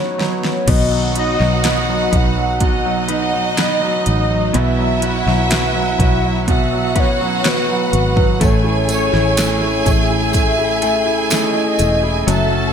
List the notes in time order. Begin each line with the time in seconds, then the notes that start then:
Already playing: B2 D#3 F#3 B3 D#4 F#4 B4 C#5
0.18 F#3 B3 D#4 B4, snare
0.45 snare
0.67 B1 B2 D#3 F#3 B3 D#4 F#4 B4 D#5 F#5, kick, closed hi-hat, crash
0.91 F#3
1.15 F#3 B3 D#4 B4, closed hi-hat
1.19 D#5
1.40 B1 F#3, snare
1.63 F#3 B3 D#4 B4, snare, closed hi-hat
1.89 F#3
2.11 B1 F#3 B3 D#4 B4, kick, closed hi-hat
2.16 F#5
2.38 F#3
2.60 B2 D#4 D#5, kick, closed hi-hat
2.85 F#3
3.08 F#3 B3 D#4 B4, closed hi-hat
3.33 F#3
3.56 F#3 B3 D#4 B4, snare, closed hi-hat
3.62 D#5
3.81 F#3
4.06 A1 D#4, closed hi-hat
4.31 F#3
4.53 B1 B2 E3 F#3 B3 E4 B4 E5, closed hi-hat
4.78 F#3
5.01 F#3 B3 E4 F#4 B4, closed hi-hat
5.05 F#5
5.27 B1 F#3, snare
5.49 F#3 B3 E4 F#4 B4, snare, closed hi-hat
5.75 F#3
5.98 B1 F#3 B3 E4 F#4 B4, kick, closed hi-hat
6.24 F#3
6.48 B2 F#4 E5 F#5, kick, closed hi-hat
6.73 F#3
6.95 F#3 B3 E4 F#4 B4 C#5, kick, closed hi-hat
7.21 F#3
7.43 F#3 B3 E4 F#4 B4, snare, closed hi-hat
7.48 B4
7.69 F#3
7.92 G#1 F#4, closed hi-hat
8.16 F#3, kick
8.40 A1 A2 E3 A3 C#4 E4 G#4 A4 G#5, kick, closed hi-hat, tambourine
8.44 C#5
8.64 E4
8.88 A3 C#4 E4 A4, closed hi-hat, tambourine
8.94 C#5
9.12 A1 E4, snare
9.37 A3 C#4 E4 A4, snare, closed hi-hat, tambourine
9.61 E4
9.85 A1 A3 C#4 E4 A4, kick, closed hi-hat, tambourine
9.91 E5
10.10 E4
10.33 A3, kick, closed hi-hat, tambourine
10.58 E4
10.82 A3 C#4 E4 A4, closed hi-hat, tambourine
11.06 E4
11.29 A3 C#4 E4 A4, snare, closed hi-hat, tambourine
11.35 D#5
11.55 E4
11.79 E1 A3, closed hi-hat, tambourine
12.03 E4
12.27 F#1 F#3 A3 C#4 F#4 A4 A5, closed hi-hat, tambourine
12.31 E5
12.51 C#4